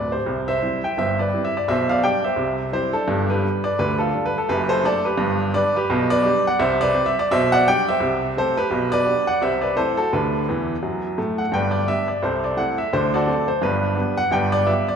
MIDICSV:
0, 0, Header, 1, 2, 480
1, 0, Start_track
1, 0, Key_signature, 0, "major"
1, 0, Tempo, 351700
1, 362, Time_signature, 4, 2, 24, 8
1, 8050, Key_signature, 1, "major"
1, 20415, End_track
2, 0, Start_track
2, 0, Title_t, "Grand piano"
2, 0, Program_c, 0, 0
2, 0, Note_on_c, 0, 26, 47
2, 0, Note_on_c, 0, 38, 46
2, 0, Note_on_c, 0, 71, 47
2, 0, Note_on_c, 0, 74, 73
2, 0, Note_on_c, 0, 91, 68
2, 151, Note_off_c, 0, 71, 0
2, 160, Note_off_c, 0, 74, 0
2, 165, Note_on_c, 0, 72, 65
2, 171, Note_off_c, 0, 91, 0
2, 192, Note_on_c, 0, 67, 43
2, 234, Note_off_c, 0, 38, 0
2, 238, Note_off_c, 0, 26, 0
2, 361, Note_on_c, 0, 36, 63
2, 363, Note_on_c, 0, 48, 55
2, 617, Control_c, 0, 64, 127
2, 626, Note_off_c, 0, 67, 0
2, 646, Note_off_c, 0, 72, 0
2, 653, Note_on_c, 0, 76, 78
2, 666, Note_on_c, 0, 72, 71
2, 770, Note_off_c, 0, 36, 0
2, 772, Note_off_c, 0, 48, 0
2, 849, Note_on_c, 0, 55, 44
2, 854, Control_c, 0, 64, 0
2, 858, Note_on_c, 0, 60, 44
2, 859, Note_on_c, 0, 64, 40
2, 1104, Note_off_c, 0, 72, 0
2, 1112, Note_off_c, 0, 55, 0
2, 1119, Note_off_c, 0, 60, 0
2, 1119, Note_off_c, 0, 64, 0
2, 1130, Note_off_c, 0, 76, 0
2, 1149, Note_on_c, 0, 79, 71
2, 1157, Note_on_c, 0, 76, 58
2, 1325, Note_off_c, 0, 76, 0
2, 1326, Note_on_c, 0, 31, 59
2, 1336, Note_off_c, 0, 79, 0
2, 1337, Note_on_c, 0, 43, 51
2, 1346, Note_on_c, 0, 76, 81
2, 1353, Note_on_c, 0, 72, 55
2, 1602, Note_off_c, 0, 72, 0
2, 1617, Note_off_c, 0, 76, 0
2, 1629, Note_on_c, 0, 74, 74
2, 1644, Note_on_c, 0, 71, 54
2, 1734, Note_off_c, 0, 31, 0
2, 1740, Note_off_c, 0, 43, 0
2, 1825, Note_on_c, 0, 55, 43
2, 1829, Note_on_c, 0, 60, 45
2, 1833, Note_on_c, 0, 64, 43
2, 1961, Note_off_c, 0, 71, 0
2, 1973, Note_on_c, 0, 76, 76
2, 1977, Note_off_c, 0, 74, 0
2, 2084, Note_off_c, 0, 55, 0
2, 2087, Note_off_c, 0, 60, 0
2, 2090, Note_off_c, 0, 64, 0
2, 2130, Note_off_c, 0, 76, 0
2, 2143, Note_on_c, 0, 74, 74
2, 2294, Note_on_c, 0, 35, 70
2, 2295, Note_off_c, 0, 74, 0
2, 2296, Note_on_c, 0, 47, 68
2, 2300, Note_on_c, 0, 76, 91
2, 2330, Note_on_c, 0, 72, 66
2, 2512, Control_c, 0, 64, 127
2, 2572, Note_off_c, 0, 72, 0
2, 2575, Note_off_c, 0, 76, 0
2, 2585, Note_on_c, 0, 77, 90
2, 2607, Note_on_c, 0, 74, 78
2, 2699, Note_off_c, 0, 35, 0
2, 2701, Note_off_c, 0, 47, 0
2, 2771, Note_off_c, 0, 74, 0
2, 2772, Note_on_c, 0, 55, 50
2, 2773, Note_on_c, 0, 62, 39
2, 2775, Note_off_c, 0, 77, 0
2, 2777, Note_on_c, 0, 67, 49
2, 2778, Note_on_c, 0, 79, 96
2, 2788, Control_c, 0, 64, 0
2, 2791, Note_on_c, 0, 74, 66
2, 3035, Note_off_c, 0, 55, 0
2, 3036, Note_off_c, 0, 62, 0
2, 3038, Note_off_c, 0, 67, 0
2, 3042, Note_off_c, 0, 74, 0
2, 3055, Note_off_c, 0, 79, 0
2, 3063, Note_on_c, 0, 76, 68
2, 3080, Note_on_c, 0, 72, 49
2, 3226, Note_on_c, 0, 36, 54
2, 3233, Note_on_c, 0, 48, 71
2, 3492, Control_c, 0, 64, 127
2, 3513, Note_off_c, 0, 72, 0
2, 3536, Note_off_c, 0, 76, 0
2, 3644, Note_off_c, 0, 36, 0
2, 3647, Note_off_c, 0, 48, 0
2, 3715, Note_on_c, 0, 55, 42
2, 3720, Note_on_c, 0, 60, 49
2, 3731, Note_on_c, 0, 72, 83
2, 3735, Note_on_c, 0, 64, 45
2, 3738, Note_on_c, 0, 67, 64
2, 3746, Control_c, 0, 64, 0
2, 3983, Note_off_c, 0, 55, 0
2, 3986, Note_off_c, 0, 60, 0
2, 3995, Note_off_c, 0, 67, 0
2, 3997, Note_off_c, 0, 64, 0
2, 4002, Note_on_c, 0, 69, 75
2, 4012, Note_off_c, 0, 72, 0
2, 4022, Note_on_c, 0, 62, 58
2, 4193, Note_on_c, 0, 31, 58
2, 4200, Note_on_c, 0, 43, 82
2, 4448, Control_c, 0, 64, 127
2, 4463, Note_off_c, 0, 62, 0
2, 4486, Note_off_c, 0, 69, 0
2, 4501, Note_on_c, 0, 71, 75
2, 4519, Note_on_c, 0, 67, 58
2, 4608, Note_off_c, 0, 31, 0
2, 4612, Note_off_c, 0, 43, 0
2, 4681, Note_on_c, 0, 55, 38
2, 4685, Note_on_c, 0, 62, 48
2, 4709, Control_c, 0, 64, 0
2, 4947, Note_off_c, 0, 55, 0
2, 4950, Note_off_c, 0, 62, 0
2, 4952, Note_off_c, 0, 67, 0
2, 4959, Note_off_c, 0, 71, 0
2, 4967, Note_on_c, 0, 74, 87
2, 4980, Note_on_c, 0, 71, 62
2, 5155, Note_off_c, 0, 71, 0
2, 5167, Note_off_c, 0, 74, 0
2, 5168, Note_on_c, 0, 50, 61
2, 5174, Note_on_c, 0, 38, 64
2, 5175, Note_on_c, 0, 71, 94
2, 5194, Note_on_c, 0, 67, 57
2, 5440, Note_on_c, 0, 69, 70
2, 5444, Note_off_c, 0, 67, 0
2, 5454, Note_off_c, 0, 71, 0
2, 5462, Note_on_c, 0, 65, 67
2, 5576, Note_off_c, 0, 50, 0
2, 5580, Note_off_c, 0, 38, 0
2, 5653, Note_on_c, 0, 55, 45
2, 5657, Note_on_c, 0, 62, 50
2, 5790, Note_off_c, 0, 65, 0
2, 5804, Note_off_c, 0, 69, 0
2, 5809, Note_on_c, 0, 71, 86
2, 5916, Note_off_c, 0, 55, 0
2, 5919, Note_off_c, 0, 62, 0
2, 5969, Note_off_c, 0, 71, 0
2, 5978, Note_on_c, 0, 69, 70
2, 6126, Note_on_c, 0, 42, 72
2, 6133, Note_off_c, 0, 69, 0
2, 6133, Note_on_c, 0, 71, 100
2, 6138, Note_on_c, 0, 30, 65
2, 6153, Note_on_c, 0, 67, 63
2, 6372, Control_c, 0, 64, 127
2, 6402, Note_on_c, 0, 72, 98
2, 6404, Note_off_c, 0, 67, 0
2, 6412, Note_on_c, 0, 69, 70
2, 6413, Note_off_c, 0, 71, 0
2, 6536, Note_off_c, 0, 42, 0
2, 6542, Note_off_c, 0, 30, 0
2, 6596, Note_off_c, 0, 69, 0
2, 6605, Note_off_c, 0, 72, 0
2, 6608, Note_on_c, 0, 57, 53
2, 6620, Note_on_c, 0, 62, 47
2, 6623, Note_on_c, 0, 74, 98
2, 6627, Control_c, 0, 64, 0
2, 6631, Note_on_c, 0, 69, 86
2, 6873, Note_off_c, 0, 57, 0
2, 6881, Note_off_c, 0, 62, 0
2, 6883, Note_off_c, 0, 69, 0
2, 6893, Note_on_c, 0, 71, 74
2, 6898, Note_off_c, 0, 74, 0
2, 6913, Note_on_c, 0, 67, 66
2, 7064, Note_on_c, 0, 43, 88
2, 7065, Note_on_c, 0, 31, 71
2, 7323, Control_c, 0, 64, 127
2, 7349, Note_off_c, 0, 67, 0
2, 7372, Note_off_c, 0, 71, 0
2, 7483, Note_off_c, 0, 43, 0
2, 7484, Note_off_c, 0, 31, 0
2, 7555, Note_on_c, 0, 55, 43
2, 7564, Note_on_c, 0, 74, 99
2, 7566, Note_on_c, 0, 67, 56
2, 7568, Note_on_c, 0, 62, 45
2, 7584, Control_c, 0, 64, 0
2, 7592, Note_on_c, 0, 71, 74
2, 7823, Note_off_c, 0, 55, 0
2, 7831, Note_off_c, 0, 67, 0
2, 7832, Note_off_c, 0, 62, 0
2, 7844, Note_off_c, 0, 71, 0
2, 7848, Note_off_c, 0, 74, 0
2, 7865, Note_on_c, 0, 71, 84
2, 7877, Note_on_c, 0, 67, 76
2, 8049, Note_on_c, 0, 35, 82
2, 8052, Note_on_c, 0, 47, 85
2, 8292, Control_c, 0, 64, 127
2, 8311, Note_off_c, 0, 67, 0
2, 8330, Note_off_c, 0, 71, 0
2, 8330, Note_on_c, 0, 74, 115
2, 8350, Note_on_c, 0, 71, 80
2, 8457, Note_off_c, 0, 35, 0
2, 8459, Note_off_c, 0, 47, 0
2, 8523, Note_on_c, 0, 55, 45
2, 8533, Note_on_c, 0, 62, 50
2, 8536, Note_on_c, 0, 67, 58
2, 8547, Control_c, 0, 64, 0
2, 8788, Note_off_c, 0, 71, 0
2, 8789, Note_off_c, 0, 55, 0
2, 8796, Note_off_c, 0, 62, 0
2, 8798, Note_off_c, 0, 67, 0
2, 8811, Note_off_c, 0, 74, 0
2, 8835, Note_on_c, 0, 78, 96
2, 8852, Note_on_c, 0, 74, 70
2, 9001, Note_on_c, 0, 36, 84
2, 9003, Note_on_c, 0, 76, 81
2, 9007, Note_on_c, 0, 48, 77
2, 9018, Note_off_c, 0, 74, 0
2, 9021, Note_off_c, 0, 78, 0
2, 9033, Note_on_c, 0, 72, 75
2, 9265, Control_c, 0, 64, 127
2, 9284, Note_off_c, 0, 72, 0
2, 9288, Note_off_c, 0, 76, 0
2, 9292, Note_on_c, 0, 74, 109
2, 9315, Note_on_c, 0, 71, 73
2, 9413, Note_off_c, 0, 36, 0
2, 9416, Note_off_c, 0, 48, 0
2, 9465, Note_on_c, 0, 55, 51
2, 9478, Note_on_c, 0, 60, 58
2, 9483, Note_on_c, 0, 67, 55
2, 9499, Control_c, 0, 64, 0
2, 9635, Note_on_c, 0, 76, 88
2, 9638, Note_off_c, 0, 71, 0
2, 9650, Note_off_c, 0, 74, 0
2, 9736, Note_off_c, 0, 55, 0
2, 9745, Note_off_c, 0, 60, 0
2, 9749, Note_off_c, 0, 67, 0
2, 9802, Note_off_c, 0, 76, 0
2, 9816, Note_on_c, 0, 74, 98
2, 9973, Note_off_c, 0, 74, 0
2, 9977, Note_on_c, 0, 47, 88
2, 9980, Note_on_c, 0, 35, 73
2, 9984, Note_on_c, 0, 76, 112
2, 9999, Note_on_c, 0, 72, 84
2, 10208, Control_c, 0, 64, 127
2, 10248, Note_off_c, 0, 72, 0
2, 10259, Note_off_c, 0, 76, 0
2, 10266, Note_on_c, 0, 78, 127
2, 10286, Note_on_c, 0, 74, 98
2, 10382, Note_off_c, 0, 47, 0
2, 10384, Note_off_c, 0, 35, 0
2, 10455, Note_off_c, 0, 74, 0
2, 10457, Note_off_c, 0, 78, 0
2, 10470, Control_c, 0, 64, 0
2, 10471, Note_on_c, 0, 55, 52
2, 10476, Note_on_c, 0, 62, 56
2, 10480, Note_on_c, 0, 79, 118
2, 10485, Note_on_c, 0, 67, 50
2, 10497, Note_on_c, 0, 74, 83
2, 10729, Note_off_c, 0, 55, 0
2, 10733, Note_off_c, 0, 62, 0
2, 10737, Note_off_c, 0, 74, 0
2, 10739, Note_off_c, 0, 67, 0
2, 10747, Note_off_c, 0, 79, 0
2, 10762, Note_on_c, 0, 76, 88
2, 10783, Note_on_c, 0, 72, 60
2, 10923, Note_on_c, 0, 36, 65
2, 10930, Note_on_c, 0, 48, 72
2, 11182, Control_c, 0, 64, 127
2, 11205, Note_off_c, 0, 72, 0
2, 11226, Note_off_c, 0, 76, 0
2, 11334, Note_off_c, 0, 36, 0
2, 11338, Note_off_c, 0, 48, 0
2, 11421, Control_c, 0, 64, 0
2, 11425, Note_on_c, 0, 57, 46
2, 11435, Note_on_c, 0, 60, 52
2, 11439, Note_on_c, 0, 67, 56
2, 11441, Note_on_c, 0, 72, 93
2, 11451, Note_on_c, 0, 69, 68
2, 11684, Note_off_c, 0, 57, 0
2, 11692, Note_off_c, 0, 60, 0
2, 11693, Note_off_c, 0, 67, 0
2, 11693, Note_off_c, 0, 69, 0
2, 11702, Note_on_c, 0, 71, 97
2, 11707, Note_off_c, 0, 72, 0
2, 11714, Note_on_c, 0, 67, 77
2, 11880, Note_on_c, 0, 47, 73
2, 11882, Note_on_c, 0, 35, 70
2, 12133, Control_c, 0, 64, 127
2, 12149, Note_off_c, 0, 67, 0
2, 12171, Note_on_c, 0, 74, 109
2, 12175, Note_off_c, 0, 71, 0
2, 12195, Note_on_c, 0, 71, 85
2, 12292, Note_off_c, 0, 47, 0
2, 12293, Note_off_c, 0, 35, 0
2, 12371, Note_on_c, 0, 59, 44
2, 12377, Note_on_c, 0, 62, 48
2, 12381, Note_on_c, 0, 67, 54
2, 12383, Control_c, 0, 64, 0
2, 12630, Note_off_c, 0, 71, 0
2, 12634, Note_off_c, 0, 59, 0
2, 12639, Note_off_c, 0, 62, 0
2, 12642, Note_off_c, 0, 67, 0
2, 12647, Note_off_c, 0, 74, 0
2, 12656, Note_on_c, 0, 78, 95
2, 12668, Note_on_c, 0, 74, 75
2, 12844, Note_off_c, 0, 74, 0
2, 12850, Note_on_c, 0, 36, 57
2, 12851, Note_off_c, 0, 78, 0
2, 12851, Note_on_c, 0, 48, 58
2, 12862, Note_on_c, 0, 76, 84
2, 12877, Note_on_c, 0, 72, 60
2, 13087, Control_c, 0, 64, 127
2, 13122, Note_on_c, 0, 74, 76
2, 13126, Note_off_c, 0, 72, 0
2, 13137, Note_off_c, 0, 76, 0
2, 13147, Note_on_c, 0, 71, 72
2, 13257, Note_off_c, 0, 36, 0
2, 13258, Note_off_c, 0, 48, 0
2, 13323, Note_off_c, 0, 71, 0
2, 13323, Note_on_c, 0, 57, 34
2, 13324, Note_off_c, 0, 74, 0
2, 13330, Note_on_c, 0, 72, 89
2, 13331, Note_on_c, 0, 60, 43
2, 13331, Note_on_c, 0, 64, 46
2, 13346, Note_on_c, 0, 69, 64
2, 13348, Control_c, 0, 64, 0
2, 13588, Note_off_c, 0, 57, 0
2, 13593, Note_off_c, 0, 69, 0
2, 13594, Note_off_c, 0, 60, 0
2, 13594, Note_off_c, 0, 64, 0
2, 13610, Note_off_c, 0, 72, 0
2, 13613, Note_on_c, 0, 69, 86
2, 13640, Note_on_c, 0, 66, 57
2, 13810, Note_off_c, 0, 66, 0
2, 13810, Note_off_c, 0, 69, 0
2, 13821, Note_on_c, 0, 38, 62
2, 13826, Note_on_c, 0, 50, 69
2, 13829, Note_on_c, 0, 71, 79
2, 13845, Note_on_c, 0, 67, 52
2, 14062, Control_c, 0, 64, 127
2, 14223, Note_off_c, 0, 38, 0
2, 14226, Note_off_c, 0, 50, 0
2, 14299, Control_c, 0, 64, 0
2, 14315, Note_on_c, 0, 40, 57
2, 14316, Note_on_c, 0, 52, 72
2, 14664, Note_off_c, 0, 40, 0
2, 14665, Note_off_c, 0, 52, 0
2, 14776, Note_on_c, 0, 54, 56
2, 14777, Note_on_c, 0, 42, 50
2, 15003, Control_c, 0, 64, 127
2, 15132, Note_off_c, 0, 42, 0
2, 15132, Note_off_c, 0, 54, 0
2, 15210, Note_off_c, 0, 67, 0
2, 15256, Note_off_c, 0, 71, 0
2, 15258, Note_on_c, 0, 45, 57
2, 15258, Note_on_c, 0, 57, 63
2, 15267, Control_c, 0, 64, 0
2, 15536, Note_on_c, 0, 78, 75
2, 15613, Note_off_c, 0, 45, 0
2, 15613, Note_off_c, 0, 57, 0
2, 15723, Note_on_c, 0, 43, 65
2, 15729, Note_off_c, 0, 78, 0
2, 15732, Note_on_c, 0, 31, 54
2, 15745, Note_on_c, 0, 79, 79
2, 15755, Note_on_c, 0, 74, 59
2, 15758, Note_on_c, 0, 71, 60
2, 15963, Note_off_c, 0, 74, 0
2, 15975, Control_c, 0, 64, 127
2, 15984, Note_on_c, 0, 74, 83
2, 16004, Note_off_c, 0, 71, 0
2, 16016, Note_off_c, 0, 79, 0
2, 16131, Note_off_c, 0, 43, 0
2, 16137, Note_off_c, 0, 31, 0
2, 16193, Note_off_c, 0, 74, 0
2, 16197, Note_on_c, 0, 59, 42
2, 16208, Note_on_c, 0, 62, 41
2, 16215, Note_on_c, 0, 67, 39
2, 16216, Note_on_c, 0, 76, 88
2, 16218, Control_c, 0, 64, 0
2, 16463, Note_off_c, 0, 59, 0
2, 16470, Note_off_c, 0, 62, 0
2, 16476, Note_off_c, 0, 67, 0
2, 16487, Note_on_c, 0, 74, 66
2, 16491, Note_off_c, 0, 76, 0
2, 16684, Note_off_c, 0, 74, 0
2, 16684, Note_on_c, 0, 48, 58
2, 16686, Note_on_c, 0, 36, 64
2, 16698, Note_on_c, 0, 72, 72
2, 16714, Note_on_c, 0, 67, 55
2, 16714, Note_on_c, 0, 69, 53
2, 16925, Control_c, 0, 64, 127
2, 16962, Note_off_c, 0, 67, 0
2, 16962, Note_off_c, 0, 69, 0
2, 16972, Note_off_c, 0, 72, 0
2, 16979, Note_on_c, 0, 74, 67
2, 17092, Note_off_c, 0, 48, 0
2, 17093, Note_off_c, 0, 36, 0
2, 17155, Note_on_c, 0, 57, 41
2, 17162, Note_on_c, 0, 78, 78
2, 17165, Note_on_c, 0, 60, 47
2, 17170, Note_off_c, 0, 74, 0
2, 17174, Note_on_c, 0, 64, 45
2, 17181, Control_c, 0, 64, 0
2, 17421, Note_off_c, 0, 57, 0
2, 17428, Note_off_c, 0, 60, 0
2, 17435, Note_off_c, 0, 64, 0
2, 17444, Note_off_c, 0, 78, 0
2, 17445, Note_on_c, 0, 76, 77
2, 17643, Note_off_c, 0, 76, 0
2, 17646, Note_on_c, 0, 38, 65
2, 17651, Note_on_c, 0, 50, 69
2, 17652, Note_on_c, 0, 72, 86
2, 17879, Control_c, 0, 64, 127
2, 17929, Note_off_c, 0, 72, 0
2, 17935, Note_on_c, 0, 74, 86
2, 17951, Note_on_c, 0, 69, 74
2, 17954, Note_on_c, 0, 66, 76
2, 18052, Note_off_c, 0, 38, 0
2, 18055, Note_off_c, 0, 50, 0
2, 18112, Note_off_c, 0, 66, 0
2, 18115, Note_on_c, 0, 57, 47
2, 18122, Note_on_c, 0, 60, 45
2, 18133, Note_on_c, 0, 66, 49
2, 18142, Control_c, 0, 64, 0
2, 18380, Note_off_c, 0, 57, 0
2, 18384, Note_off_c, 0, 69, 0
2, 18386, Note_off_c, 0, 60, 0
2, 18393, Note_off_c, 0, 66, 0
2, 18397, Note_on_c, 0, 72, 74
2, 18408, Note_off_c, 0, 74, 0
2, 18584, Note_on_c, 0, 31, 66
2, 18584, Note_on_c, 0, 43, 71
2, 18598, Note_off_c, 0, 72, 0
2, 18602, Note_on_c, 0, 71, 85
2, 18612, Note_on_c, 0, 67, 53
2, 18615, Note_on_c, 0, 62, 60
2, 18851, Control_c, 0, 64, 127
2, 18999, Note_off_c, 0, 31, 0
2, 18999, Note_off_c, 0, 43, 0
2, 19051, Note_off_c, 0, 62, 0
2, 19062, Note_on_c, 0, 55, 45
2, 19062, Note_on_c, 0, 59, 52
2, 19071, Note_on_c, 0, 62, 49
2, 19093, Control_c, 0, 64, 0
2, 19314, Note_off_c, 0, 67, 0
2, 19330, Note_off_c, 0, 59, 0
2, 19331, Note_off_c, 0, 55, 0
2, 19337, Note_off_c, 0, 62, 0
2, 19346, Note_on_c, 0, 78, 99
2, 19362, Note_off_c, 0, 71, 0
2, 19528, Note_on_c, 0, 31, 66
2, 19541, Note_on_c, 0, 43, 72
2, 19548, Note_on_c, 0, 79, 90
2, 19551, Note_off_c, 0, 78, 0
2, 19562, Note_on_c, 0, 74, 68
2, 19567, Note_on_c, 0, 71, 68
2, 19799, Control_c, 0, 64, 127
2, 19800, Note_off_c, 0, 74, 0
2, 19821, Note_on_c, 0, 74, 101
2, 19825, Note_off_c, 0, 71, 0
2, 19835, Note_off_c, 0, 79, 0
2, 19949, Note_off_c, 0, 31, 0
2, 19956, Note_off_c, 0, 43, 0
2, 20011, Note_on_c, 0, 55, 45
2, 20013, Note_on_c, 0, 59, 43
2, 20013, Note_on_c, 0, 65, 43
2, 20017, Note_on_c, 0, 76, 83
2, 20028, Note_off_c, 0, 74, 0
2, 20057, Control_c, 0, 64, 0
2, 20282, Note_off_c, 0, 55, 0
2, 20283, Note_off_c, 0, 59, 0
2, 20283, Note_off_c, 0, 65, 0
2, 20309, Note_off_c, 0, 76, 0
2, 20315, Note_on_c, 0, 74, 81
2, 20415, Note_off_c, 0, 74, 0
2, 20415, End_track
0, 0, End_of_file